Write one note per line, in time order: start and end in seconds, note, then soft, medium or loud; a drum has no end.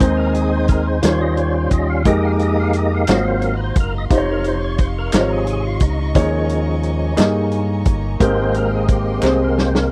0.00 0.99 D#2 medium
0.00 0.99 D#3 medium
0.00 0.69 G#3 medium
0.00 0.99 G#3 soft
0.00 0.70 C4 medium
0.00 0.99 C4 soft
0.00 0.70 D#4 medium
0.00 1.00 D#4 medium
0.00 0.17 C5 medium
0.00 0.70 C5 medium
0.00 1.03 D#5 medium
0.00 1.03 G#5 medium
0.00 2.02 C6 medium
0.00 1.03 D#6 medium
0.00 kick medium
0.00 closed hi-hat medium
0.17 0.34 A#4 medium
0.34 0.53 G#4 medium
0.34 closed hi-hat soft
0.51 0.68 C5 medium
0.68 0.87 A#4 medium
0.68 kick medium
0.68 closed hi-hat soft
0.87 1.03 C5 medium
1.02 1.68 D#2 loud
1.02 2.02 D#3 medium
1.02 1.72 G3 soft
1.02 2.02 G3 medium
1.02 1.72 C#4 soft
1.02 2.03 C#4 soft
1.02 1.72 F4 soft
1.02 2.03 F4 medium
1.02 1.72 C5 medium
1.02 1.53 C5 soft
1.02 1.22 C#5 medium
1.02 2.05 F5 medium
1.02 3.06 G5 medium
1.02 snare loud
1.02 closed hi-hat medium
1.21 1.37 D#5 medium
1.37 1.54 C#5 medium
1.37 closed hi-hat soft
1.54 1.72 C5 medium
1.71 2.06 D#2 medium
1.71 1.90 D#5 medium
1.71 kick medium
1.71 closed hi-hat soft
1.90 2.05 F5 medium
2.05 3.04 F2 loud
2.05 2.75 G#3 medium
2.05 3.05 G#3 soft
2.05 3.05 A#3 soft
2.05 2.75 D#4 medium
2.05 3.06 D#4 medium
2.05 3.05 G4 soft
2.05 2.75 G4 medium
2.05 2.75 A#4 medium
2.05 2.25 D#5 medium
2.05 3.06 F5 medium
2.05 3.07 A#5 medium
2.05 3.08 D#6 medium
2.05 kick medium
2.05 closed hi-hat medium
2.25 2.32 F5 medium
2.39 2.58 D#5 medium
2.39 closed hi-hat soft
2.60 2.76 F5 medium
2.73 closed hi-hat soft
2.77 2.93 D#5 medium
2.94 3.10 F5 medium
3.07 3.73 G#1 loud
3.07 4.07 G#2 soft
3.07 3.54 F#3 soft
3.07 3.77 A#3 medium
3.07 3.55 A#3 soft
3.07 3.55 C4 soft
3.07 3.77 F4 soft
3.07 3.77 F#4 medium
3.07 3.77 C5 medium
3.07 4.09 D#5 medium
3.07 6.12 F5 medium
3.07 4.09 A#5 medium
3.07 6.12 C6 medium
3.07 snare loud
3.07 clap medium
3.07 closed hi-hat medium
3.11 3.26 D#5 medium
3.11 3.55 F5 medium
3.28 3.44 C5 medium
3.42 3.56 A#4 medium
3.42 closed hi-hat soft
3.57 3.61 B4 medium
3.63 3.78 C5 medium
3.75 4.08 F#1 medium
3.75 kick medium
3.75 closed hi-hat medium
3.80 3.95 A#4 medium
3.98 4.05 D#5 medium
4.10 5.09 F1 medium
4.10 4.79 C3 medium
4.10 4.58 F3 medium
4.10 4.79 D#4 medium
4.10 4.80 F4 medium
4.10 4.18 C5 medium
4.10 8.16 D#5 medium
4.10 8.16 C#6 medium
4.10 kick medium
4.10 closed hi-hat medium
4.15 4.58 C3 soft
4.15 4.59 D#4 medium
4.15 4.31 C5 medium
4.15 4.83 C#5 medium
4.31 4.47 A#4 medium
4.44 4.63 C5 medium
4.44 closed hi-hat soft
4.64 4.79 C#5 medium
4.78 4.88 C5 medium
4.78 kick medium
4.78 closed hi-hat soft
4.98 5.32 A#4 medium
5.12 5.78 G#1 medium
5.12 5.82 C3 medium
5.12 5.45 C3 soft
5.12 5.44 F3 soft
5.12 5.82 D#4 soft
5.12 5.45 D#4 medium
5.12 5.82 F4 soft
5.12 5.20 C5 medium
5.12 snare loud
5.12 clap medium
5.12 closed hi-hat medium
5.21 5.86 C#5 medium
5.33 5.47 G#4 medium
5.47 5.65 G#4 medium
5.47 closed hi-hat soft
5.67 5.83 F4 medium
5.80 6.12 C#2 medium
5.80 6.00 D#4 medium
5.80 kick medium
5.80 closed hi-hat medium
6.01 7.66 D#4 medium
6.15 7.14 D#2 medium
6.15 7.14 D#3 medium
6.15 7.14 F3 medium
6.15 7.14 G#3 soft
6.15 6.84 A#3 medium
6.15 7.15 C#4 medium
6.15 6.84 D#4 medium
6.15 6.84 G#4 medium
6.15 6.85 C#5 medium
6.15 8.18 G#5 medium
6.15 9.92 A#5 medium
6.15 kick loud
6.15 closed hi-hat medium
6.49 closed hi-hat soft
6.83 closed hi-hat soft
7.16 7.82 G2 loud
7.16 7.86 A#3 medium
7.16 7.86 D#4 medium
7.16 7.24 G4 soft
7.16 7.86 D#5 medium
7.16 snare loud
7.16 clap medium
7.16 closed hi-hat medium
7.24 7.90 G#4 medium
7.52 closed hi-hat soft
7.85 8.17 G1 medium
7.85 kick medium
7.85 closed hi-hat soft
8.20 9.19 G#1 loud
8.20 9.19 G#2 medium
8.20 9.92 G#3 soft
8.20 8.89 G#3 medium
8.20 9.92 A#3 soft
8.20 8.89 C4 medium
8.20 9.92 C4 medium
8.20 8.89 G4 medium
8.20 8.89 A#4 medium
8.20 8.56 C5 medium
8.20 9.92 D#5 medium
8.20 9.92 G5 medium
8.20 9.92 C6 medium
8.20 kick medium
8.20 closed hi-hat medium
8.54 8.72 A#4 medium
8.54 closed hi-hat soft
8.75 8.89 G#4 medium
8.88 kick medium
8.88 closed hi-hat soft
8.92 9.22 G4 medium
9.22 9.87 C2 loud
9.22 9.91 G#3 medium
9.22 9.92 C4 medium
9.22 9.92 G4 medium
9.22 9.42 G#4 medium
9.22 9.92 C5 medium
9.22 snare medium
9.22 clap medium
9.44 9.59 A#4 medium
9.58 9.74 C5 medium
9.58 snare medium
9.75 9.92 A#4 medium
9.75 snare medium